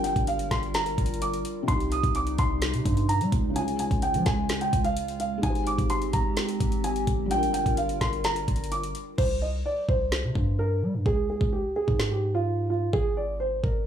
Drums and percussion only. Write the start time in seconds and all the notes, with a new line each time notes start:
0.04 closed hi-hat
0.16 kick, closed hi-hat
0.27 closed hi-hat
0.39 closed hi-hat
0.51 kick, snare, closed hi-hat
0.63 closed hi-hat
0.74 snare, closed hi-hat
0.86 closed hi-hat
0.98 kick, closed hi-hat
1.06 closed hi-hat
1.14 closed hi-hat
1.22 closed hi-hat
1.33 closed hi-hat
1.45 closed hi-hat
1.68 kick, closed hi-hat
1.80 closed hi-hat
1.92 closed hi-hat
2.03 kick, closed hi-hat
2.15 closed hi-hat
2.27 closed hi-hat
2.38 kick, closed hi-hat
2.62 snare, closed hi-hat
2.74 closed hi-hat
2.85 kick, closed hi-hat
2.97 closed hi-hat
3.09 closed hi-hat
3.21 closed hi-hat
3.32 kick, closed hi-hat
3.56 closed hi-hat
3.68 closed hi-hat
3.79 closed hi-hat
3.91 kick, closed hi-hat
4.02 closed hi-hat
4.14 closed hi-hat
4.26 kick, snare, closed hi-hat
4.49 snare, closed hi-hat
4.61 closed hi-hat
4.73 kick, closed hi-hat
4.84 closed hi-hat
4.97 closed hi-hat
5.08 closed hi-hat
5.20 closed hi-hat
5.43 kick, closed hi-hat
5.55 closed hi-hat
5.67 closed hi-hat
5.78 kick, closed hi-hat
5.90 closed hi-hat
6.02 closed hi-hat
6.13 kick, closed hi-hat
6.37 snare, closed hi-hat
6.49 closed hi-hat
6.60 kick, closed hi-hat
6.72 closed hi-hat
6.84 closed hi-hat
6.96 closed hi-hat
7.07 kick, closed hi-hat
7.31 closed hi-hat
7.43 closed hi-hat
7.54 closed hi-hat
7.66 kick, closed hi-hat
7.77 closed hi-hat
7.89 closed hi-hat
8.01 kick, snare, closed hi-hat
8.13 closed hi-hat
8.24 snare, closed hi-hat
8.36 closed hi-hat
8.48 kick, closed hi-hat
8.56 closed hi-hat
8.64 closed hi-hat
8.72 closed hi-hat
8.83 closed hi-hat
8.95 closed hi-hat
9.18 kick, crash
9.89 kick
10.12 snare
10.35 kick
11.06 kick
11.41 kick
11.88 kick
12.00 snare
12.93 kick
13.64 kick